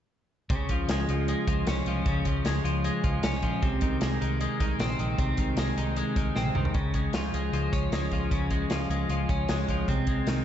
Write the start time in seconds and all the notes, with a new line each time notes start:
0.50 C#2 C#3, kick, closed hi-hat
0.69 C#2 F3, kick, closed hi-hat
0.88 C#2 G#3, snare, closed hi-hat
1.08 C#2 F3, closed hi-hat
1.28 G#3, closed hi-hat
1.47 C#2 F3, kick, closed hi-hat
1.67 C2 C#4, snare, closed hi-hat
1.85 C2 F3, closed hi-hat
2.06 C#2 C#3, kick, closed hi-hat
2.25 C#2 F3, kick, closed hi-hat
2.44 C#2 G#3, snare, closed hi-hat
2.64 C#2 F3, closed hi-hat
2.84 G#3, closed hi-hat
3.04 C#2 F3, kick, closed hi-hat
3.22 C2 C#4, snare, closed hi-hat
3.42 A#1 F3, kick, closed hi-hat
3.62 C2 C3, kick, closed hi-hat
3.81 C2 D#3, kick, closed hi-hat
4.01 C2 G#3, snare, closed hi-hat
4.21 C2 D#3, closed hi-hat
4.41 G#3, closed hi-hat
4.60 C2 D#3, kick, closed hi-hat
4.79 A#1 C4, snare, closed hi-hat
4.99 A#1 D#3, closed hi-hat
5.18 C2 C3, kick, closed hi-hat
5.37 C2 D#3, kick, closed hi-hat
5.57 C2 G#3, snare, closed hi-hat
5.77 C2 D#3, closed hi-hat
5.96 G#3, closed hi-hat
6.16 C2 D#3, kick, closed hi-hat
6.35 A#1 C4, snare
6.45 high tom
6.54 C2 D#3, mid tom
6.65 floor tom
6.74 C#2 C#3, kick, closed hi-hat
6.94 G#3, kick, closed hi-hat
7.13 C#2 F3, snare, closed hi-hat
7.33 C#2 G#3, closed hi-hat
7.52 C#2 F3, closed hi-hat
7.72 C#2 C#4, kick, closed hi-hat
7.92 C#2 G#3, snare, closed hi-hat
8.11 C#2 F3, kick, closed hi-hat
8.31 C#2 C#3, kick, closed hi-hat
8.51 G#3, kick, closed hi-hat
8.70 C#2 F3, snare, closed hi-hat
8.89 C#2 G#3, closed hi-hat
9.08 C#2 F3, closed hi-hat
9.29 C#2 C#4, kick, closed hi-hat
9.48 C#2 G#3, snare, closed hi-hat
9.68 C#2 F3, kick, closed hi-hat
9.88 C2 C3, kick, closed hi-hat
10.07 G#3, kick, closed hi-hat
10.27 C2 D#3, snare, closed hi-hat